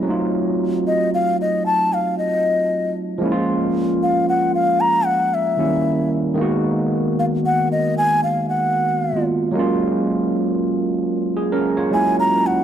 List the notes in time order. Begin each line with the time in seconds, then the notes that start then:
0.03 F#3 A3
0.07 C4 D#4 F4
0.87 D#5
1.14 F5
1.41 D#5
1.66 A5
1.93 F5
2.18 D#5
3.18 F3 G#3 A#3
3.23 C#4 E4
3.32 F4
4.03 F5
4.29 F#5
4.55 F5
4.80 A#5
5.06 F#5
5.34 E5
5.57 D#3 F#3 A#3 C#4 E4
5.64 G3
6.34 D#3 G#3 A#3
6.39 B3 F#4
7.19 F5
7.46 F#5
7.72 D#5
7.98 G#5
8.24 F5
8.49 F#5
9.13 D#3 G#3 A#3 B3 F4
9.51 F#3 G#3 A#3
9.57 C#4 F4
11.37 G#4
11.52 C#4 A#4
11.77 F4 C#5
11.91 F#3 G#3 A#3 C#4 E4 G#5
12.20 A#5
12.46 F#5